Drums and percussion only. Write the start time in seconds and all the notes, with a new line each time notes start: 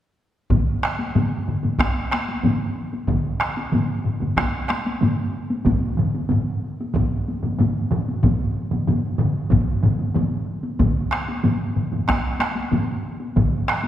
0.50 taiko, taiko low-mid, taiko mid, taiko high
0.83 taiko rim
0.99 taiko high
1.15 taiko low-mid, taiko mid, taiko high
1.48 taiko low-mid, taiko mid
1.63 taiko low-mid, taiko mid, taiko high
1.79 taiko rim, taiko, taiko high
2.11 taiko rim, taiko high
2.29 taiko high
2.44 taiko low-mid, taiko mid, taiko high
2.93 taiko high
3.07 taiko, taiko low-mid, taiko mid, taiko high
3.40 taiko rim
3.57 taiko high
3.72 taiko low-mid, taiko mid, taiko high
4.04 taiko low-mid, taiko mid
4.21 taiko low-mid, taiko mid, taiko high
4.37 taiko rim, taiko, taiko high
4.69 taiko rim, taiko high
4.70 taiko rim
4.86 taiko high
5.01 taiko low-mid, taiko mid, taiko high
5.50 taiko high
5.65 taiko, taiko low-mid, taiko mid, taiko high
5.97 taiko low-mid, taiko mid
6.15 taiko high
6.29 taiko low-mid, taiko mid, taiko high
6.80 taiko high
6.94 taiko, taiko low-mid, taiko mid, taiko high
7.28 taiko high
7.43 taiko low-mid, taiko mid, taiko high
7.59 taiko low-mid, taiko mid, taiko high
7.91 taiko low-mid, taiko mid
8.09 taiko high
8.23 taiko, taiko low-mid, taiko mid, taiko high
8.71 taiko low-mid, taiko mid, taiko high
8.87 taiko low-mid, taiko mid, taiko high
9.19 taiko low-mid, taiko mid
9.50 taiko, taiko low-mid, taiko mid, taiko high
9.83 taiko low-mid, taiko mid, taiko high
10.00 taiko high
10.14 taiko low-mid, taiko mid, taiko high
10.64 taiko high
10.79 taiko, taiko low-mid, taiko mid, taiko high
11.11 taiko rim
11.28 taiko high
11.44 taiko low-mid, taiko mid, taiko high
11.76 taiko low-mid, taiko mid
11.92 taiko low-mid, taiko mid, taiko high
12.08 taiko rim, taiko, taiko high
12.40 taiko rim, taiko high
12.56 taiko high
12.72 taiko low-mid, taiko mid, taiko high
13.20 taiko high
13.36 taiko, taiko low-mid, taiko mid, taiko high
13.68 taiko rim
13.84 taiko high